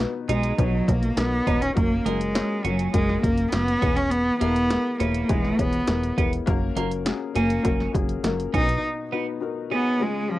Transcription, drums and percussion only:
0.00 snare loud
0.29 closed hi-hat medium
0.44 closed hi-hat soft
0.59 kick medium
0.59 closed hi-hat medium
0.88 kick medium
0.88 closed hi-hat medium
1.03 closed hi-hat soft
1.17 snare loud
1.17 closed hi-hat medium
1.47 kick medium
1.47 closed hi-hat medium
1.62 closed hi-hat soft
1.76 kick medium
1.76 closed hi-hat medium
2.06 closed hi-hat medium
2.21 closed hi-hat soft
2.35 snare loud
2.35 closed hi-hat medium
2.65 closed hi-hat medium
2.79 closed hi-hat soft
2.94 kick medium
2.94 closed hi-hat medium
3.09 snare soft
3.23 kick medium
3.23 closed hi-hat medium
3.37 closed hi-hat soft
3.52 snare loud
3.52 closed hi-hat medium
3.68 closed hi-hat soft
3.82 kick medium
3.82 closed hi-hat medium
3.97 closed hi-hat soft
4.11 closed hi-hat medium
4.41 closed hi-hat medium
4.56 closed hi-hat soft
4.70 snare loud
4.70 closed hi-hat medium
5.00 closed hi-hat medium
5.14 closed hi-hat soft
5.29 kick medium
5.29 closed hi-hat medium
5.44 snare soft
5.59 kick medium
5.59 closed hi-hat medium
5.73 closed hi-hat soft
5.87 snare medium
5.87 closed hi-hat medium
6.03 closed hi-hat soft
6.18 kick medium
6.18 closed hi-hat medium
6.33 closed hi-hat soft
6.47 kick loud
6.47 closed hi-hat medium
6.77 closed hi-hat medium
6.91 closed hi-hat soft
7.06 snare loud
7.06 closed hi-hat medium
7.36 closed hi-hat medium
7.50 closed hi-hat soft
7.65 kick medium
7.65 closed hi-hat medium
7.81 snare soft
7.95 kick medium
7.95 closed hi-hat medium
8.09 closed hi-hat soft
8.24 snare medium
8.24 closed hi-hat medium
8.40 closed hi-hat soft
8.54 kick medium
8.54 closed hi-hat medium
8.69 closed hi-hat soft

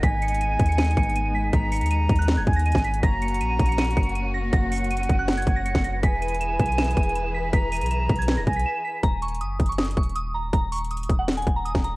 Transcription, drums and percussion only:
0.03 kick loud
0.03 closed hi-hat medium
0.22 closed hi-hat medium
0.28 closed hi-hat medium
0.34 closed hi-hat medium
0.41 closed hi-hat medium
0.59 kick medium
0.59 closed hi-hat medium
0.66 closed hi-hat medium
0.72 closed hi-hat medium
0.78 snare loud
0.78 closed hi-hat medium
0.84 closed hi-hat medium
0.91 closed hi-hat medium
0.97 kick loud
0.97 closed hi-hat medium
1.03 closed hi-hat soft
1.09 closed hi-hat soft
1.16 closed hi-hat medium
1.53 kick loud
1.53 closed hi-hat medium
1.72 closed hi-hat medium
1.72 open hi-hat medium
1.77 closed hi-hat medium
1.81 closed hi-hat medium
1.86 closed hi-hat medium
1.91 closed hi-hat medium
2.09 kick loud
2.09 closed hi-hat medium
2.16 closed hi-hat medium
2.22 closed hi-hat medium
2.28 snare loud
2.28 closed hi-hat medium
2.47 kick loud
2.47 closed hi-hat soft
2.53 closed hi-hat medium
2.59 closed hi-hat medium
2.66 closed hi-hat soft
2.72 kick loud
2.72 snare medium
2.72 closed hi-hat medium
2.78 closed hi-hat medium
2.84 closed hi-hat medium
2.94 closed hi-hat medium
3.03 kick loud
3.03 closed hi-hat medium
3.22 closed hi-hat medium
3.28 closed hi-hat medium
3.34 closed hi-hat medium
3.41 closed hi-hat medium
3.59 kick loud
3.59 closed hi-hat medium
3.66 closed hi-hat medium
3.72 closed hi-hat medium
3.78 snare loud
3.78 closed hi-hat medium
3.84 closed hi-hat medium
3.91 closed hi-hat medium
3.97 kick loud
3.97 closed hi-hat medium
4.03 closed hi-hat soft
4.09 closed hi-hat soft
4.16 closed hi-hat medium
4.53 kick loud
4.53 closed hi-hat medium
4.72 closed hi-hat soft
4.72 open hi-hat medium
4.78 closed hi-hat medium
4.84 closed hi-hat medium
4.91 closed hi-hat medium
4.97 closed hi-hat medium
5.03 closed hi-hat medium
5.09 kick medium
5.09 closed hi-hat medium
5.28 snare loud
5.28 closed hi-hat medium
5.33 closed hi-hat medium
5.37 closed hi-hat medium
5.42 closed hi-hat medium
5.47 kick medium
5.47 closed hi-hat medium
5.66 closed hi-hat medium
5.75 kick medium
5.75 snare medium
5.75 closed hi-hat soft
5.84 closed hi-hat medium
6.03 kick loud
6.03 closed hi-hat medium
6.22 closed hi-hat medium
6.28 closed hi-hat medium
6.34 closed hi-hat medium
6.41 closed hi-hat medium
6.59 kick medium
6.59 closed hi-hat medium
6.66 closed hi-hat medium
6.72 closed hi-hat medium
6.78 snare loud
6.78 closed hi-hat medium
6.84 closed hi-hat medium
6.91 closed hi-hat medium
6.97 kick loud
6.97 closed hi-hat medium
7.03 closed hi-hat soft
7.09 closed hi-hat soft
7.15 closed hi-hat medium
7.53 kick loud
7.53 closed hi-hat medium
7.72 closed hi-hat medium
7.72 open hi-hat medium
7.77 closed hi-hat medium
7.81 closed hi-hat medium
7.86 closed hi-hat medium
7.91 closed hi-hat medium
8.09 kick medium
8.09 closed hi-hat soft
8.16 closed hi-hat medium
8.22 closed hi-hat medium
8.28 snare loud
8.28 closed hi-hat medium
8.47 kick loud
8.47 closed hi-hat soft
8.53 closed hi-hat medium
8.59 closed hi-hat medium
9.03 kick loud
9.03 closed hi-hat medium
9.22 closed hi-hat medium
9.28 closed hi-hat medium
9.34 closed hi-hat medium
9.41 closed hi-hat medium
9.59 kick medium
9.59 closed hi-hat medium
9.66 closed hi-hat medium
9.72 closed hi-hat medium
9.78 snare loud
9.78 closed hi-hat medium
9.84 closed hi-hat medium
9.91 closed hi-hat medium
9.97 kick medium
9.97 closed hi-hat medium
10.03 closed hi-hat soft
10.09 closed hi-hat soft
10.16 closed hi-hat medium
10.53 kick loud
10.53 closed hi-hat medium
10.72 closed hi-hat soft
10.72 open hi-hat medium
10.78 closed hi-hat medium
10.84 closed hi-hat medium
10.91 closed hi-hat medium
10.97 closed hi-hat medium
11.03 closed hi-hat medium
11.09 kick medium
11.09 closed hi-hat medium
11.28 snare loud
11.28 closed hi-hat medium
11.33 closed hi-hat medium
11.38 closed hi-hat medium
11.42 closed hi-hat medium
11.47 kick medium
11.47 closed hi-hat medium
11.66 closed hi-hat medium
11.75 kick medium
11.75 snare medium
11.75 closed hi-hat soft
11.84 closed hi-hat medium

